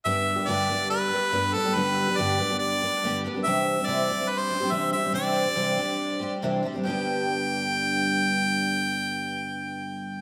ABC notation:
X:1
M:4/4
L:1/16
Q:1/4=141
K:G
V:1 name="Harmonica"
e4 d4 B6 A2 | B4 d4 d6 z2 | e4 d4 B c3 e2 e2 | d12 z4 |
g16- | g16 |]
V:2 name="Twelve-string acoustic guitar"
[G,,D,G,B,DG]3 [G,B,DG] [G,,D,G,B,DG]2 [G,B,DG]4 [G,B,DG]2 [G,,D,G,B,DG]2 [G,B,DG] [G,B,DG] | [G,,D,G,B,DG]3 [G,B,DG] [G,,D,G,B,DG]2 [G,B,DG] [G,B,DG]3 [G,B,DG]2 [G,,D,G,B,DG]2 [G,B,DG] [G,B,DG] | [C,E,G,CDG]3 [G,CDG] [C,E,G,CDG]2 [G,CDG] [G,CDG]3 [G,CDG] [G,CDG] [C,E,G,CDG]2 [G,CDG] [G,CDG] | [C,E,G,CDG]3 [G,CG] [C,E,G,CDG]2 [G,CDG]4 [G,CDG]2 [C,E,G,CDG]2 [G,CDG] [G,CDG] |
[G,,D,G,B,DG]16- | [G,,D,G,B,DG]16 |]